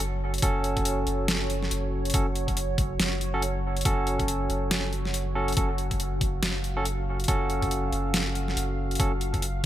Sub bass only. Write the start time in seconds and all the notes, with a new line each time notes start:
Already playing: F#1
0.42 F#1
1.07 F#1
1.71 F#1
2.14 F#1
2.99 F#1
3.85 F#1
4.50 F#1
5.57 F#1
6.42 F#1
7.28 F#1
7.92 F#1
8.57 F#1
9.00 F#1